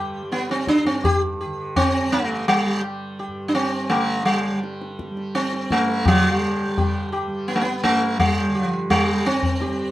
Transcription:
Already playing: G2 D3 G3 G4
0.23 G3
0.32 B3, tabla te
0.50 C4, tabla te
0.67 D4, tabla ke
0.84 G2 C4, tabla te
1.04 G4, tabla tin, tabla ge
1.41 D3 G4
1.76 C4, tabla na, tabla ge
2.06 G3
2.12 A3
2.48 G3, tabla na
2.67 G3
2.84 tabla na
3.19 G4, tabla tin
3.27 G2
3.48 D4
3.55 C4, tabla na
3.89 D3 A3, tabla na
4.25 G3, tabla na
4.50 G3
4.63 tabla te
4.82 tabla te
4.99 tabla ke
5.11 G3
5.17 tabla te
5.35 C4, tabla te
5.53 tabla te
5.71 G2 A3, tabla ke
5.88 tabla te
6.06 D3 F3 G4, tabla na, tabla ge
6.38 G3
6.67 G3
6.78 G4, tabla tin, tabla ge
7.12 G4, tabla na
7.28 G3
7.48 B3, tabla te
7.56 A3
7.61 B3
7.67 tabla te
7.83 A3, tabla ke
7.88 G2
8.02 tabla te
8.19 G3, tabla tin, tabla ge
8.48 D3
8.55 G4
8.67 F3
8.90 G3, tabla na, tabla ge
9.08 G3
9.26 C4, tabla te
9.43 tabla ge
9.61 G4, tabla te
9.68 G3

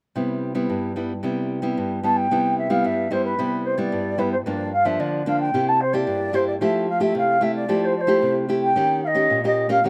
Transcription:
0.15 C3 G3 B3 E4
0.55 G3 B3 E4
0.70 G2
0.96 G3 B3 E4
1.23 C3 G3 B3 E4
1.62 G3 B3 E4
1.77 G2
2.03 G3 B3 E4 A5
2.16 G5
2.31 C3 G3 B3 E4
2.58 E5
2.70 G3 B3 E4 F5
2.84 G2 E5
3.11 G3 B3 E4 C5
3.24 B4
3.39 C3 G3 B3 E4
3.65 C5
3.77 G3 B3 E4 D5
3.92 G2
4.18 G3 B3 E4 B4
4.32 C5
4.46 G2 F3 A#3 D4 D5
4.72 F5
4.85 F3 A#3 D4 E5
5.00 D3 D5
5.26 F3 A#3 D4 F5
5.40 G5
5.54 C3 A#3 E4 G4
5.68 A5
5.81 C5
5.93 A#3 E4 G4 D5
6.07 G2
6.33 A#3 E4 G4 C5
6.47 D5
6.61 F3 A3 E4 G4 E5
6.89 F5
7.00 A3 E4 G4 E5
7.15 C3 F5
7.41 A3 E4 G4 E5
7.55 D5
7.69 F3 A3 E4 G4
7.84 C5
7.96 D5
8.01 C5
8.07 A3 E4 G4
8.22 C3
8.49 A3 E4 G4
8.63 G5
8.76 D#3 A#3 C#4 G4
9.04 D#5 F5
9.15 A#3 C#4 G4
9.30 A#2
9.44 A#3 C#4 G4 D#5
9.69 A#3 C#4 G4 F5
9.84 D#3 A#3 C#4 G4 G5

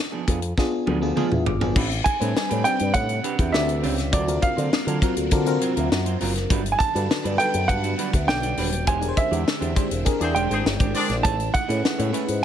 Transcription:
0.12 F3 B3 D4 G#4
0.27 F2 F3 B3 D4 G#4, kick, closed hi-hat
0.42 closed hi-hat
0.57 B3 D4 F4 G#4, muted clean electric guitar stroke, kick, snare
0.72 muted clean electric guitar stroke
0.86 D2 F3 B3 D4 G#4, high tom
1.01 F3 B3 D4 F4 G#4
1.16 F3 B3 D4 F4 G#4 F5, mid tom
1.31 E2, muted clean electric guitar stroke, mid tom
1.46 G1 D6, muted clean electric guitar stroke, floor tom
1.60 G#1 F3 B3 D4 F4 G#4, floor tom
1.75 A1 C3 G3 C4 D4 G4 B4, kick, crash
1.91 muted clean electric guitar stroke, closed hi-hat
2.04 G#5, muted clean electric guitar stroke, kick, closed hi-hat
2.19 A2 G3 C4 D4 G4 B4 C5, closed hi-hat
2.35 muted clean electric guitar stroke, muted picked electric bass stroke, snare
2.49 A2 C4 D4 G4 B4, closed hi-hat
2.64 C4 D4 G4 B4 G5, closed hi-hat
2.79 G2, muted clean electric guitar stroke, closed hi-hat
2.94 A2 F#5, muted clean electric guitar stroke, kick, closed hi-hat
3.09 muted clean electric guitar stroke, closed hi-hat
3.23 C4 D4 G4 B4, closed hi-hat
3.38 E2 C4 D4 G4 B4, kick, closed hi-hat
3.52 D2 C4 D4 G4 D5 E5, snare
3.68 muted clean electric guitar stroke, closed hi-hat
3.83 C#2 C4 D4 G4 B4, open hi-hat
3.98 muted clean electric guitar stroke, snare, closed hi-hat
4.12 D2 F#3 A#3 C4 F4 A#4 D5, kick, closed hi-hat
4.27 C4 F4 F#4 A#4, muted clean electric guitar stroke, closed hi-hat
4.42 F5, muted clean electric guitar stroke, kick, closed hi-hat
4.57 D3 F#3 C4 F4 C5, closed hi-hat
4.72 muted clean electric guitar stroke, muted picked electric bass stroke, snare
4.87 D3 F#3 C4 F4 A#4, closed hi-hat
5.01 F#3 C4 F4 F#4 A#4, kick, closed hi-hat
5.17 D2, closed hi-hat
5.31 D3 C4 F4 F#4 A#4, muted clean electric guitar stroke, kick, closed hi-hat
5.46 C4 F4 F#4 A#4, muted clean electric guitar stroke, closed hi-hat
5.61 F#3 C4 F4 A#4, closed hi-hat
5.76 D2 F#3 C4 F4 A#4, closed hi-hat
5.92 F#2, snare
6.06 F#3 C4 F4 C5, closed hi-hat
6.21 F#1 F#3 C4 F4 A#4, open hi-hat
6.35 muted clean electric guitar stroke, snare, closed hi-hat
6.49 G1 D3 F#3 G3 B3 D4 F#4 B4, kick, closed hi-hat
6.65 muted clean electric guitar stroke, closed hi-hat
6.72 G#5
6.79 A5, muted clean electric guitar stroke, kick, closed hi-hat
6.94 G2 G3 D4 F#4 A4 B4 D5, closed hi-hat
7.10 muted clean electric guitar stroke, muted picked electric bass stroke, snare
7.24 G2 G3 D4 F#4 B4, closed hi-hat
7.38 G3 D4 F#4 A4 B4 G5, closed hi-hat
7.54 F#2, muted clean electric guitar stroke, closed hi-hat
7.68 G2 F#5, muted clean electric guitar stroke, kick, closed hi-hat
7.83 G3 D4 F#4 B4, closed hi-hat
7.98 G3 D4 F#4 B4, closed hi-hat
8.13 D2, muted clean electric guitar stroke, kick, closed hi-hat
8.27 B1 F#3 D4 A4 D5 G5, muted clean electric guitar stroke, snare
8.43 G3 D4 F#4 D5, closed hi-hat
8.57 D#1 G3 D4 F#4 B4, open hi-hat
8.72 muted clean electric guitar stroke, closed hi-hat
8.86 E1 G#3 C4 D4 E4 G4 C5 G#5, kick, closed hi-hat
9.01 D4 G4 G#4 A#4, muted clean electric guitar stroke, closed hi-hat
9.08 C5
9.16 E5, muted clean electric guitar stroke, kick, closed hi-hat
9.31 E2 G#3 D4 G4 D5, closed hi-hat
9.46 muted clean electric guitar stroke, muted picked electric bass stroke, snare
9.60 E2 G#3 D4 G4 C5, closed hi-hat
9.75 G#3 D4 G4 G#4 C5, kick, closed hi-hat
9.90 E1, muted clean electric guitar stroke, closed hi-hat
10.05 D4 G4 G#4 A#4, muted clean electric guitar stroke, kick, closed hi-hat
10.20 E2 C4 D4 G4 G#4 C5 D5, muted clean electric guitar stroke, closed hi-hat
10.35 E1 G#3 D4 G4 C5 G5, closed hi-hat
10.50 G#1 G#3 C4 D4 G4 G#4 C5, closed hi-hat
10.65 G1, muted clean electric guitar stroke, snare
10.79 G#1 G#3 D4 G4 D5, kick, closed hi-hat
10.94 G#3 D4 G4 G#4 C5 D5, open hi-hat
11.09 A#1, muted clean electric guitar stroke, snare, closed hi-hat
11.23 C#3 G#3 A3 E4 G#4 C#5 A5, kick, closed hi-hat
11.38 muted clean electric guitar stroke, closed hi-hat
11.53 F#5, muted clean electric guitar stroke, kick, closed hi-hat
11.68 A2 A3 C#4 E4 G#4 B4 D#5, closed hi-hat
11.83 muted clean electric guitar stroke, muted picked electric bass stroke, snare
11.98 A2 A3 E4 G#4 C#5, closed hi-hat
12.12 A3 C#4 E4 G#4 B4 C#5, closed hi-hat
12.27 G#2, muted clean electric guitar stroke, closed hi-hat

